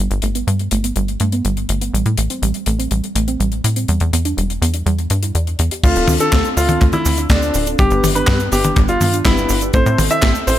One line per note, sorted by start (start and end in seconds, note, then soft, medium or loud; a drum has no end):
0.11 0.21 G1 loud
0.11 closed hi-hat soft
0.22 0.44 G1 medium
0.22 0.27 A3 medium
0.22 closed hi-hat medium
0.35 0.46 B3 loud
0.35 closed hi-hat medium
0.47 0.69 G2 medium
0.47 0.54 G3 medium
0.47 closed hi-hat medium
0.59 closed hi-hat soft
0.71 0.93 G1 medium
0.71 0.76 A3 medium
0.71 closed hi-hat loud
0.84 0.94 B3 medium
0.84 closed hi-hat medium
0.96 1.17 G1 loud
0.96 1.06 G3 medium
0.96 closed hi-hat medium
1.08 closed hi-hat soft
1.20 1.42 G2 medium
1.20 1.25 A3 medium
1.20 closed hi-hat medium
1.32 1.43 B3 loud
1.32 closed hi-hat medium
1.45 1.66 G1 medium
1.45 1.52 G3 medium
1.45 closed hi-hat medium
1.57 closed hi-hat soft
1.69 1.90 G1 medium
1.69 1.73 A3 medium
1.69 closed hi-hat medium
1.81 1.92 B3 medium
1.81 closed hi-hat medium
1.94 2.04 A1 loud
1.94 2.04 G3 medium
1.94 closed hi-hat medium
2.06 2.16 A2 medium
2.06 closed hi-hat soft
2.18 2.29 A1 medium
2.18 2.22 A3 medium
2.18 closed hi-hat loud
2.30 2.41 C4 loud
2.30 closed hi-hat medium
2.42 2.53 A1 loud
2.42 2.49 G3 medium
2.42 closed hi-hat medium
2.54 closed hi-hat soft
2.66 2.88 A1 medium
2.66 2.71 A3 medium
2.66 closed hi-hat medium
2.79 2.89 C4 medium
2.79 closed hi-hat medium
2.91 3.02 A1 medium
2.91 3.02 G3 medium
2.91 closed hi-hat medium
3.04 closed hi-hat soft
3.15 3.37 A1 loud
3.15 3.20 A3 medium
3.15 closed hi-hat loud
3.28 3.38 C4 loud
3.28 closed hi-hat medium
3.40 3.61 A1 medium
3.40 3.47 G3 medium
3.40 closed hi-hat medium
3.52 closed hi-hat soft
3.64 3.86 A2 medium
3.64 3.68 A3 medium
3.64 closed hi-hat loud
3.76 3.87 C4 medium
3.76 closed hi-hat medium
3.88 3.99 E2 medium
3.88 3.99 G3 medium
3.88 closed hi-hat medium
4.00 4.11 E2 loud
4.00 closed hi-hat soft
4.13 4.34 E2 medium
4.13 4.17 B3 medium
4.13 closed hi-hat loud
4.25 4.36 D4 loud
4.25 closed hi-hat medium
4.37 4.59 E1 medium
4.37 4.44 G3 medium
4.37 closed hi-hat medium
4.50 closed hi-hat soft
4.62 4.83 E2 medium
4.62 4.66 B3 medium
4.62 closed hi-hat loud
4.74 4.84 D4 medium
4.74 closed hi-hat medium
4.86 5.07 E2 loud
4.86 4.97 G3 medium
4.86 closed hi-hat medium
4.99 closed hi-hat soft
5.10 5.32 G2 medium
5.10 5.15 D4 loud
5.10 closed hi-hat loud
5.23 5.30 E4 medium
5.23 closed hi-hat medium
5.35 5.56 E2 medium
5.35 5.42 D5 medium
5.35 closed hi-hat medium
5.47 closed hi-hat soft
5.59 5.70 E2 medium
5.59 5.66 B3 medium
5.59 closed hi-hat loud
5.71 5.82 G4 medium
5.71 closed hi-hat medium
5.84 5.94 D2 loud
5.84 5.94 A3 medium
5.84 6.17 C4 loud
5.84 6.17 D4 medium
5.84 6.10 F4 loud
5.84 6.17 F4 medium
5.84 6.17 A4 loud
5.84 kick loud
5.84 closed hi-hat medium
5.84 crash loud
5.84 cabasa medium
5.95 6.07 D1 loud
5.95 closed hi-hat soft
5.95 cabasa soft
6.08 6.19 D2 medium
6.08 6.12 C4 medium
6.08 open hi-hat loud
6.08 high tom medium
6.08 cabasa medium
6.20 6.54 C4 medium
6.20 6.54 D4 medium
6.20 6.31 D4 loud
6.20 6.54 F4 medium
6.20 6.54 A4 medium
6.20 6.46 A4 medium
6.20 closed hi-hat medium
6.20 cabasa soft
6.32 6.43 D2 loud
6.32 6.40 A3 medium
6.32 kick loud
6.32 snare loud
6.32 clap loud
6.32 closed hi-hat medium
6.32 cabasa medium
6.44 closed hi-hat soft
6.44 cabasa soft
6.57 6.78 D2 loud
6.57 7.03 C4 medium
6.57 6.61 C4 medium
6.57 7.03 D4 medium
6.57 6.83 F4 medium
6.57 7.03 A4 medium
6.57 open hi-hat loud
6.57 cabasa medium
6.69 6.80 D4 medium
6.69 closed hi-hat medium
6.69 high tom medium
6.69 cabasa soft
6.81 6.92 D2 medium
6.81 6.92 A3 medium
6.81 kick loud
6.81 clap medium
6.81 closed hi-hat medium
6.81 cabasa medium
6.92 7.19 E4 medium
6.92 closed hi-hat soft
6.92 high tom medium
6.92 cabasa soft
7.05 7.27 D2 loud
7.05 7.10 C4 medium
7.05 open hi-hat loud
7.05 cabasa medium
7.17 7.28 D4 loud
7.17 closed hi-hat medium
7.17 cabasa soft
7.30 7.51 D2 medium
7.30 7.37 A3 medium
7.30 7.64 C4 medium
7.30 7.64 D4 medium
7.30 7.65 D4 medium
7.30 7.64 F4 medium
7.30 7.64 A4 loud
7.30 kick loud
7.30 snare loud
7.30 clap loud
7.30 closed hi-hat medium
7.30 cabasa medium
7.42 closed hi-hat soft
7.42 cabasa soft
7.54 7.76 D1 medium
7.54 7.59 C4 medium
7.54 open hi-hat loud
7.54 cabasa medium
7.67 7.76 C4 medium
7.67 7.77 D4 medium
7.67 7.76 D4 medium
7.67 7.76 F4 medium
7.67 7.76 A4 medium
7.67 closed hi-hat medium
7.67 cabasa soft
7.79 7.90 G1 medium
7.79 7.89 G3 medium
7.79 8.13 B3 loud
7.79 8.13 D4 medium
7.79 8.05 G4 loud
7.79 8.13 G4 medium
7.79 8.13 B4 loud
7.79 kick loud
7.79 closed hi-hat medium
7.79 cabasa medium
7.90 8.02 G1 loud
7.90 closed hi-hat soft
7.90 cabasa soft
8.03 8.25 G1 medium
8.03 8.07 B3 medium
8.03 open hi-hat loud
8.03 high tom medium
8.03 cabasa medium
8.15 8.49 B3 medium
8.15 8.26 D4 loud
8.15 8.49 D4 medium
8.15 8.49 G4 medium
8.15 8.41 B4 medium
8.15 closed hi-hat medium
8.15 cabasa soft
8.27 8.49 G2 medium
8.27 8.35 G3 medium
8.27 kick loud
8.27 snare loud
8.27 clap loud
8.27 closed hi-hat medium
8.27 cabasa medium
8.40 closed hi-hat soft
8.40 cabasa soft
8.52 8.73 G1 medium
8.52 8.56 B3 medium
8.52 8.98 B3 medium
8.52 8.98 D4 medium
8.52 8.98 G4 medium
8.52 8.78 G4 medium
8.52 8.98 B4 medium
8.52 snare soft
8.52 open hi-hat loud
8.52 cabasa medium
8.64 8.75 D4 medium
8.64 closed hi-hat medium
8.64 high tom medium
8.64 cabasa soft
8.76 8.98 G1 loud
8.76 8.87 G3 medium
8.76 kick loud
8.76 clap medium
8.76 closed hi-hat medium
8.76 cabasa medium
8.88 9.15 F4 medium
8.88 closed hi-hat soft
8.88 cabasa soft
9.01 9.22 G2 loud
9.01 9.05 B3 medium
9.01 open hi-hat loud
9.01 high tom medium
9.01 cabasa medium
9.13 9.23 D4 loud
9.13 closed hi-hat medium
9.13 cabasa soft
9.25 9.47 G1 loud
9.25 9.32 G3 medium
9.25 9.59 B3 medium
9.25 9.59 D4 medium
9.25 9.60 E4 medium
9.25 9.59 G4 medium
9.25 9.59 B4 loud
9.25 kick loud
9.25 snare loud
9.25 clap medium
9.25 closed hi-hat medium
9.25 cabasa medium
9.37 closed hi-hat soft
9.37 cabasa soft
9.49 9.71 G1 loud
9.49 9.54 B3 medium
9.49 open hi-hat loud
9.49 cabasa medium
9.61 9.71 B3 medium
9.61 9.72 D4 medium
9.61 9.71 D4 medium
9.61 9.71 G4 medium
9.61 9.71 B4 medium
9.61 closed hi-hat medium
9.61 cabasa soft
9.73 9.85 A1 loud
9.73 9.85 A3 medium
9.73 10.08 C4 loud
9.73 10.08 E4 medium
9.73 10.08 A4 medium
9.73 10.00 C5 loud
9.73 10.08 C5 loud
9.73 kick loud
9.73 closed hi-hat medium
9.73 cabasa medium
9.86 9.97 A2 loud
9.86 closed hi-hat soft
9.86 cabasa soft
9.98 10.09 A1 medium
9.98 10.03 C4 medium
9.98 open hi-hat loud
9.98 high tom medium
9.98 cabasa medium
10.10 10.44 C4 medium
10.10 10.44 E4 medium
10.10 10.21 E4 loud
10.10 10.44 A4 medium
10.10 10.44 C5 medium
10.10 10.37 E5 loud
10.10 closed hi-hat medium
10.10 cabasa medium
10.22 10.34 A1 loud
10.22 10.30 A3 medium
10.22 kick loud
10.22 snare loud
10.22 clap medium
10.22 closed hi-hat medium
10.22 cabasa medium
10.35 closed hi-hat soft
10.35 cabasa soft
10.47 10.59 A1 loud
10.47 10.51 C4 medium
10.47 10.59 C4 medium
10.47 10.59 E4 medium
10.47 10.59 A4 medium
10.47 10.59 C5 medium
10.47 open hi-hat loud
10.47 cabasa medium